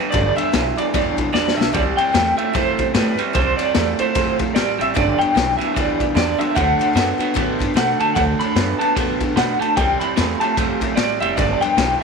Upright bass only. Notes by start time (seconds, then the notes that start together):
0.14 G1
0.37 muted upright bass stroke
0.53 B1
0.94 D2
1.18 C2
1.34 E2
1.58 B1
1.75 C2
2.14 E2
2.55 G2
2.79 G2
2.94 A2
3.19 muted upright bass stroke
3.35 C2
3.76 E2
4.00 muted upright bass stroke
4.16 G2
4.40 F2
4.56 A2
4.79 A1
4.97 G1
5.20 muted upright bass stroke
5.36 B1
5.60 muted upright bass stroke
5.76 D2
6.00 D2
6.15 E2
6.40 muted upright bass stroke
6.57 D2
6.95 F#2
7.18 muted upright bass stroke
7.36 A2
7.60 G2
7.74 B2
7.99 D3
8.16 D2
8.55 F#2
8.97 A2
9.21 A2
9.36 B2
9.60 muted upright bass stroke
9.77 C2
10.18 E2
10.41 muted upright bass stroke
10.57 G2
10.81 F2
10.97 A2
11.21 F1
11.37 G1
11.60 muted upright bass stroke
11.77 B1